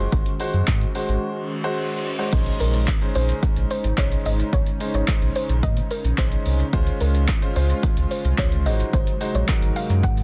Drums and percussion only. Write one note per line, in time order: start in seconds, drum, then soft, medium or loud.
0.12 kick loud
0.12 closed hi-hat medium
0.26 closed hi-hat medium
0.40 open hi-hat medium
0.54 closed hi-hat medium
0.67 kick loud
0.67 clap loud
0.67 closed hi-hat medium
0.81 closed hi-hat soft
0.95 open hi-hat medium
1.09 closed hi-hat medium
2.33 kick loud
2.33 closed hi-hat medium
2.33 crash loud
2.33 shaker medium
2.46 closed hi-hat medium
2.46 shaker soft
2.60 open hi-hat medium
2.60 shaker medium
2.74 closed hi-hat medium
2.74 shaker medium
2.88 kick loud
2.88 clap loud
2.88 closed hi-hat medium
2.88 tambourine medium
2.88 shaker medium
3.01 closed hi-hat soft
3.01 shaker soft
3.15 open hi-hat medium
3.15 shaker medium
3.29 closed hi-hat medium
3.29 shaker medium
3.43 kick loud
3.43 closed hi-hat medium
3.43 shaker medium
3.56 closed hi-hat medium
3.56 shaker medium
3.71 open hi-hat medium
3.71 shaker medium
3.84 closed hi-hat soft
3.84 shaker medium
3.98 kick loud
3.98 clap loud
3.98 closed hi-hat medium
3.98 tambourine medium
3.98 shaker medium
4.12 closed hi-hat medium
4.12 shaker medium
4.26 open hi-hat medium
4.26 shaker medium
4.39 closed hi-hat soft
4.39 shaker medium
4.53 kick loud
4.53 closed hi-hat medium
4.53 shaker medium
4.67 closed hi-hat medium
4.67 shaker soft
4.80 open hi-hat medium
4.80 shaker medium
4.94 closed hi-hat medium
4.94 shaker medium
5.08 kick loud
5.08 clap loud
5.08 closed hi-hat medium
5.08 tambourine medium
5.08 shaker medium
5.22 closed hi-hat soft
5.22 shaker soft
5.35 open hi-hat medium
5.35 shaker medium
5.49 closed hi-hat medium
5.49 shaker medium
5.63 kick loud
5.63 closed hi-hat medium
5.63 shaker medium
5.77 closed hi-hat medium
5.77 shaker medium
5.91 open hi-hat medium
5.91 shaker medium
6.04 closed hi-hat soft
6.04 shaker medium
6.18 kick loud
6.18 clap loud
6.18 closed hi-hat medium
6.18 tambourine medium
6.18 shaker medium
6.32 closed hi-hat medium
6.32 shaker medium
6.46 open hi-hat medium
6.46 shaker medium
6.59 closed hi-hat soft
6.59 shaker medium
6.73 kick loud
6.73 closed hi-hat medium
6.73 shaker medium
6.87 closed hi-hat medium
6.87 shaker medium
7.01 open hi-hat medium
7.01 shaker medium
7.14 closed hi-hat medium
7.14 shaker medium
7.28 kick loud
7.28 clap loud
7.28 closed hi-hat medium
7.28 tambourine medium
7.28 shaker medium
7.42 closed hi-hat medium
7.42 shaker medium
7.56 open hi-hat medium
7.56 shaker medium
7.70 closed hi-hat medium
7.70 shaker medium
7.83 kick loud
7.83 closed hi-hat medium
7.83 shaker medium
7.97 closed hi-hat medium
7.97 shaker medium
8.11 open hi-hat medium
8.11 shaker medium
8.25 closed hi-hat soft
8.25 shaker medium
8.38 kick loud
8.38 clap loud
8.38 closed hi-hat medium
8.38 tambourine medium
8.38 shaker medium
8.52 closed hi-hat medium
8.52 shaker medium
8.66 open hi-hat medium
8.66 shaker medium
8.80 closed hi-hat soft
8.80 shaker medium
8.93 kick loud
8.93 closed hi-hat medium
8.93 shaker medium
9.07 closed hi-hat medium
9.07 shaker medium
9.21 open hi-hat medium
9.21 shaker medium
9.35 closed hi-hat medium
9.35 shaker medium
9.48 kick loud
9.48 clap loud
9.48 closed hi-hat medium
9.48 tambourine medium
9.48 shaker medium
9.62 closed hi-hat soft
9.62 shaker soft
9.76 open hi-hat medium
9.76 shaker medium
9.90 closed hi-hat medium
9.90 shaker medium
10.03 kick loud
10.03 closed hi-hat medium
10.03 shaker medium
10.17 closed hi-hat medium
10.17 shaker medium